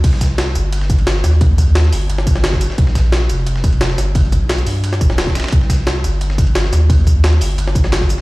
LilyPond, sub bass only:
\new Staff \with { instrumentName = "Sub bass" } { \clef bass \time 4/4 \key c \minor \tempo 4 = 175 c,4. g,,2 ees,8~ | ees,8. ees,8. g,,4 g,,4~ g,,16 r16 | bes,,4. f,,2 g,,8~ | g,,8. b,,8. g,4 d,,4~ d,,16 r16 |
c,4. g,,2 ees,8~ | ees,8. ees,8. g,,4 g,,4~ g,,16 r16 | }